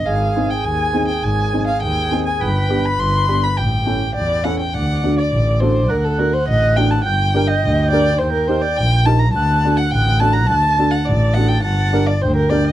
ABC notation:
X:1
M:2/4
L:1/16
Q:1/4=104
K:none
V:1 name="Accordion"
_A8- | _A8 | B8 | G6 z2 |
d8 | ^f8 | g8 | g6 z2 |
^f8 | a8 | a4 g4 |]
V:2 name="Violin"
f3 g _a3 g | _a3 f g3 a | g3 b c'3 b | g4 d2 ^f g |
^f3 d3 c2 | _B A B c _e2 g a | g3 _e3 d2 | c _B c d g2 a _b |
a3 ^f g2 a _b | a3 ^f d2 f g | ^f3 d c _B d _e |]
V:3 name="Upright piano"
z2 [C_E_A] z3 [CEA] z | z2 [C_E_A] z3 [CEA] z | z2 [B,DG] z3 [B,DG] z | z2 [^CEA] z3 [CEA] z |
z2 [D^FA] z3 [DFA] z | z2 [D^FA] z3 [DFA] z | z2 [DG_B] z3 [DGB] z | z2 [_EG_B] z3 [EGB] z |
z2 [D^FA] z3 [DFA] z | z2 [D^FA] z3 [DFA] z | z2 [DG_B] z3 [DGB] z |]
V:4 name="Double bass" clef=bass
_A,,,4 _E,,4 | _A,,,4 _E,,4 | G,,,4 G,,,4 | A,,,4 E,,4 |
D,,4 A,,,4 | D,,4 A,,,4 | G,,,4 D,,4 | _E,,4 _B,,,4 |
D,,4 A,,,4 | D,,4 A,,,4 | G,,,4 D,,4 |]